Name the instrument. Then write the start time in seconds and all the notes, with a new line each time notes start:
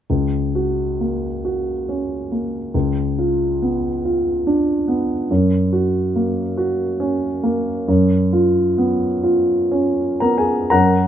grand piano
0.10 C#2
0.55 F#4
1.00 A#3
1.45 F#4
1.89 C#4
2.32 A#3
2.74 C#2
3.19 F4
3.62 B3
4.05 F4
4.47 D4
4.88 B3
5.31 F#2
5.73 F#4
6.16 A#3
6.57 F#4
7.00 C#4
7.43 A#3
7.88 F#2
8.33 F4
8.78 B3
9.24 F4
9.71 C#4
10.20 B3 A#4 A#5
10.38 G#4 G#5
10.70 F#2 A#4 F#5 A#5